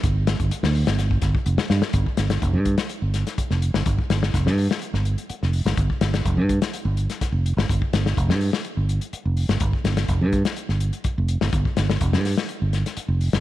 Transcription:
<<
  \new Staff \with { instrumentName = "Fingered electric bass" } { \clef bass \time 4/4 \key f \major \tempo 4 = 125 g,,8. g,,16 r16 d,8 g,,8. g,,16 r16 f,,16 r16 g,16 r16 | g,,16 r16 g,,8 f,,16 g,8 r8 g,,8 r8 f,,8 g,,16 | g,,16 r16 g,,8 f,,16 g,8 r8 g,,8 r8 f,,8 g,,16 | g,,16 r16 g,,8 f,,16 g,8 r8 g,,8 r8 f,,8 g,,16 |
g,,16 r16 g,,8 f,,16 g,8 r8 g,,8 r8 f,,8 g,,16 | g,,16 r16 g,,8 f,,16 g,8 r8 g,,8 r8 f,,8 g,,16 | g,,16 r16 g,,8 f,,16 g,8 r8 g,,8 r8 f,,8 g,,16 | }
  \new DrumStaff \with { instrumentName = "Drums" } \drummode { \time 4/4 <hh bd>8 <hh sn>16 <hh bd>16 hh16 sn16 hho16 <hh sn>16 <hh sn>16 bd16 <hh bd sn>16 bd16 hh16 sn16 sn16 sn16 | <hh bd>16 bd16 <hh sn>16 <hh sn>16 <hh bd>8 <hh bd>16 <hh sn>16 hh8 <hh sn>16 <hh sn>16 <hh bd>16 sn16 hh16 sn16 | <hh bd>16 bd16 <hh sn>16 sn16 <hh bd sn>16 sn16 hho16 sn16 hh16 sn16 hh16 hh16 hh16 sn16 hho16 <hh sn>16 | <hh bd>16 bd16 <hh sn>16 <hh sn>16 <hh bd>8 <hh bd>16 <hh sn>16 hh8 hh16 <hh sn>16 <hh bd sn>8 hh16 sn16 |
<hh bd>16 bd16 <hh sn>16 sn16 <hh bd>16 sn16 hho16 sn16 hh8 hh16 hh16 hh8 hho16 <hh sn>16 | <hh bd>16 bd16 <hh sn>16 <hh sn>16 <hh bd>8 <hh bd>16 <hh sn>16 hh16 sn16 hh16 hh16 <hh bd>8 hh16 sn16 | <hh bd>16 bd16 <hh sn>16 sn16 <hh bd>16 sn16 <hho sn>16 sn16 hh8 <hh sn>16 <hh sn>16 hh8 hho16 <hh sn>16 | }
>>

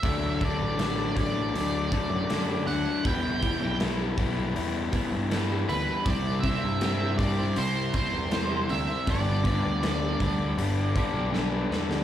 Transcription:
<<
  \new Staff \with { instrumentName = "Lead electric guitar" } { \time 4/4 \key e \minor \tempo 4 = 80 e''8 d''4 d''2 fis''8 | g''4 r2 r8 b'8 | d''8 e''4 d''8 c''8 c''4 e''8 | d''2. r4 | }
  \new Staff \with { instrumentName = "Clean electric guitar" } { \time 4/4 \key e \minor <d fis a d' fis' d''>8 <a d' fis' d''>8 <d fis a d' fis' d''>16 <a d' fis' d''>8 <a d' fis' d''>8. <a d' fis' d''>8 <d fis a d' fis' d''>16 <a d' fis' d''>16 <a d' fis' d''>16 <a d' fis' d''>16 | <e b e' g' b'>8 <b e' g' b'>8 <e b e' g' b'>16 <e' g' b'>8 <e' g' b'>8. <b e' g' b'>8 <e b e' g' b'>16 <e' g' b'>16 <b e' g' b'>16 <e' g' b'>16 | <c g c' e' g' c''>8 <c' e' g' c''>8 <c g c' e' g' c''>16 <c' e' g' c''>8 <c' e' g' c''>8. <c' e' g' c''>8 <c g c' e' g' c''>16 <c' e' g' c''>16 <c' e' g' c''>16 <c' e' g' c''>16 | <g b e' b' d''>8 <b e' b' d''>8 <g b e' b' d''>16 <e' b' d''>8 <e' b' d''>8. <b e' b' d''>8 <g b e' b' d''>16 <e' b' d''>16 <b e' b' d''>16 <e' b' d''>16 | }
  \new Staff \with { instrumentName = "Overdriven electric guitar" } { \clef bass \time 4/4 \key e \minor <d fis a d'>8 <d fis a d'>8 <d fis a d'>8 <d fis a d'>8 <d fis a d'>8 <d fis a d'>8 <d fis a d'>8 <d fis a d'>8 | <e g b e'>8 <e g b e'>8 <e g b e'>8 <e g b e'>8 <e g b e'>8 <e g b e'>8 <e g b e'>8 <e g b e'>8 | <c g c' e'>8 <c g c' e'>8 <c g c' e'>8 <c g c' e'>8 <c g c' e'>8 <c g c' e'>8 <c g c' e'>8 <c g c' e'>8 | <g, d g b d'>8 <g, d g b d'>8 <g, d g b d'>8 <g, d g b d'>8 <g, d g b d'>8 <g, d g b d'>8 <g, d g b d'>8 <g, d g b d'>8 | }
  \new Staff \with { instrumentName = "Picked electric bass" } { \clef bass \time 4/4 \key e \minor d,8. a,,8. a,,8 d,8 r16 fis,8. d,16 r16 | e,8. b,,8. b,,8 e,8 r16 g,8. d,16 r16 | c,8. g,8. g,8 c,8 r16 e,8. d,16 r16 | g,,8. d,8. d,8 g,,8 r16 b,,8. e,16 d,16 | }
  \new DrumStaff \with { instrumentName = "Drums" } \drummode { \time 4/4 <hho bd>8 <hho bd>8 <hho sn>8 <hho bd>8 hho8 <hho bd>8 <hho sn>8 hho8 | <hho bd>8 <hho bd>8 <hho sn>8 <hho bd>8 hho8 <hho bd>8 <hho sn>8 hho8 | <hho bd>8 <hho bd>8 <hho sn>8 <hho bd>8 hho8 <hho bd>8 <hho sn>8 hho8 | <hho bd>8 <hho bd>8 <hho sn>8 <hho bd>8 hho8 <hho bd>8 sn8 sn16 sn16 | }
>>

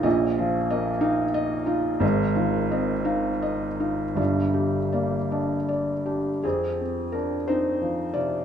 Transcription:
<<
  \new Staff \with { instrumentName = "Felt piano" } { \time 6/8 \key f \dorian \tempo 4. = 57 ees''8 f'8 ees''8 f''8 ees''8 f'8 | ees''8 f'8 ees''8 f''8 ees''8 f'8 | d''8 g'8 d''8 ees''8 d''8 g'8 | <c' aes'>4 <d' bes'>8 <ees' c''>4 <f' d''>8 | }
  \new Staff \with { instrumentName = "Felt piano" } { \clef bass \time 6/8 \key f \dorian <bes,, bes,>8 f8 bes8 ees'4 ees'8 | <aes,, aes,>8 ees8 c'8 ees'4 ees'8 | <g,, g,>8 d8 bes8 d'4 d'8 | f,8 c'4 c'8 f8 c8 | }
>>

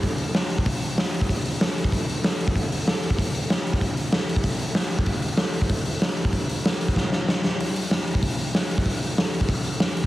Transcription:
\new DrumStaff \with { instrumentName = "Drums" } \drummode { \time 4/4 \tempo 4 = 190 <hho bd>8 hho8 <hho sn>8 hho16 bd16 <hho bd>8 hho8 <hho sn>8 hho16 bd16 | <hho bd>8 hho8 <hho sn>8 hho16 bd16 <hho bd>8 hho8 <hho sn>8 hho16 bd16 | <hho bd>8 hho8 <hho sn>8 hho16 bd16 <hho bd>8 hho8 <hho sn>8 hho16 bd16 | <hho bd>8 hho8 <hho sn>8 hho16 bd16 <hho bd>8 hho8 <hho sn>8 hho16 bd16 |
<hho bd>8 hho8 <hho sn>8 hho16 bd16 <hho bd>8 hho8 <hho sn>8 hho16 bd16 | <hho bd>8 hho8 <hho sn>8 hho16 bd16 <bd sn>8 sn8 sn8 sn8 | hho8 hho8 <hho sn>8 hho16 bd16 <hho bd>8 hho8 <hho sn>8 hho16 bd16 | <hho bd>8 hho8 <hho sn>8 hho16 bd16 <hho bd>8 hho8 <hho sn>8 hho8 | }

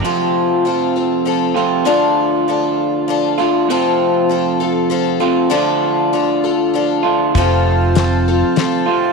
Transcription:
<<
  \new Staff \with { instrumentName = "Harmonium" } { \time 3/4 \key f \major \tempo 4 = 98 r2. | r2. | r2. | r2. |
<f' c'' a''>2. | }
  \new Staff \with { instrumentName = "Twelve-string acoustic guitar" } { \time 3/4 \key f \major <f c' f' a'>4 <f c' f' a'>8 <c' f' a'>8 <f c' f' a'>8 <c' f' a'>8 | <d f d' f' a'>4 <f d' f' a'>4 <f d' f' a'>8 <d' f' a'>8 | <f c' f' a'>4 <f c' f' a'>8 <c' f' a'>8 <f c' f' a'>8 <c' f' a'>8 | <d f d' f' a'>4 <f d' f' a'>8 <d' f' a'>8 <f d' f' a'>4 |
<f c' f' a'>4 <f c' f' a'>8 <c' f' a'>8 <f c' f' a'>4 | }
  \new Staff \with { instrumentName = "Clean electric guitar" } { \time 3/4 \key f \major <f, c f a c' f'>2~ <f, c f a c' f'>8 <f, c f a c' f'>8 | <d a d' f'>2~ <d a d' f'>8 <d a d' f'>8 | <f, c f a c' f'>2~ <f, c f a c' f'>8 <f, c f a c' f'>8 | <d a d' f'>2~ <d a d' f'>8 <d a d' f'>8 |
<f, c f a c' f'>2~ <f, c f a c' f'>8 <f, c f a c' f'>8 | }
  \new Staff \with { instrumentName = "Picked electric bass" } { \clef bass \time 3/4 \key f \major r2. | r2. | r2. | r2. |
f,,2 r4 | }
  \new DrumStaff \with { instrumentName = "Drums" } \drummode { \time 3/4 r4 r4 r4 | r4 r4 r4 | r4 r4 r4 | r4 r4 r4 |
<hh bd>4 <hh sn>4 <hh sn>4 | }
>>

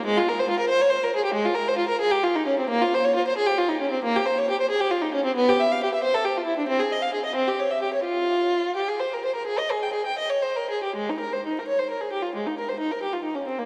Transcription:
\new Staff \with { instrumentName = "Violin" } { \time 12/8 \key f \minor \tempo 4. = 89 aes16 f'16 bes'16 c''16 f'16 bes'16 c''16 des''16 c''16 bes'16 aes'16 g'16 aes16 f'16 bes'16 c''16 f'16 bes'16 aes'16 g'16 f'16 ees'16 des'16 c'16 | bes16 f'16 c''16 des''16 f'16 c''16 aes'16 g'16 f'16 ees'16 des'16 c'16 bes16 g'16 c''16 des''16 g'16 c''16 aes'16 g'16 f'16 ees'16 des'16 c'16 | b16 g'16 e''16 f''16 g'16 e''16 c''16 a'16 g'16 f'16 e'16 d'16 c'16 aes'16 ees''16 f''16 aes'16 ees''16 c'16 g'16 des''16 e''16 g'16 des''16 | f'4. g'16 aes'16 c''16 bes'16 c''16 bes'16 aes'16 ees''16 aes'16 g''16 aes'16 g''16 ees''16 des''16 c''16 bes'16 aes'16 g'16 |
\key bes \dorian aes16 ees'16 bes'16 c''16 ees'16 bes'16 des''16 c''16 bes'16 aes'16 g'16 f'16 aes16 ees'16 bes'16 c''16 ees'16 bes'16 g'16 f'16 ees'16 des'16 c'16 bes16 | }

